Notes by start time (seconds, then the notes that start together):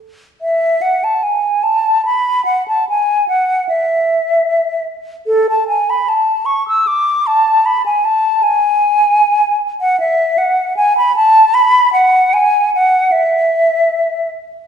0.42 E5
0.82 F#5
1.04 A5
1.23 G#5
1.63 A5
2.05 B5
2.45 F#5
2.68 A5
2.89 G#5
3.28 F#5
3.69 E5
5.27 A4
5.50 A5
5.68 G#5
5.90 B5
6.09 A5
6.46 C#6
6.68 E6
6.87 D6
7.27 A5
7.66 B5
7.86 G#5
8.05 A5
8.43 G#5
9.81 F#5
10.00 E5
10.38 F#5
10.77 G#5
10.98 B5
11.16 A5
11.54 B5
11.93 F#5
12.34 G#5
12.75 F#5
13.12 E5